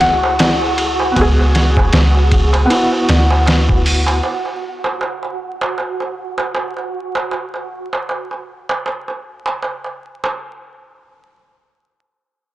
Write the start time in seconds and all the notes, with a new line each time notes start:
Already playing: C#2 A3 E4 F#4 G#4
0.01 F#5, snare, ride
0.23 darbuka tek
0.39 E4, snare, ride, darbuka tek
0.61 darbuka tek
0.78 ride
1.00 darbuka tek
1.12 B3, darbuka tek
1.16 C#2 F#4, kick, ride
1.21 G#4
1.39 darbuka tek
1.55 snare, ride
1.77 kick, darbuka tek
1.93 C#2, snare, ride, darbuka tek
2.15 darbuka tek
2.31 kick, ride
2.53 ride, darbuka tek
2.66 B3
2.70 E4, ride, darbuka tek
2.75 F#4
2.91 darbuka tek
3.09 D2, snare, ride
3.30 darbuka tek
3.46 snare, ride, darbuka tek
3.68 kick, darbuka tek
3.86 open hi-hat
4.06 ride, darbuka tek
4.23 darbuka tek
4.45 darbuka tek
4.84 darbuka tek
5.01 darbuka tek
5.23 darbuka tek
5.61 darbuka tek
5.78 darbuka tek
6.00 darbuka tek
6.38 darbuka tek
6.55 darbuka tek
6.77 darbuka tek
7.15 darbuka tek
7.31 darbuka tek
7.54 darbuka tek
7.93 darbuka tek
8.09 darbuka tek
8.31 darbuka tek
8.69 darbuka tek
8.86 darbuka tek
9.08 darbuka tek
9.46 darbuka tek
9.62 darbuka tek
9.84 darbuka tek
10.24 darbuka tek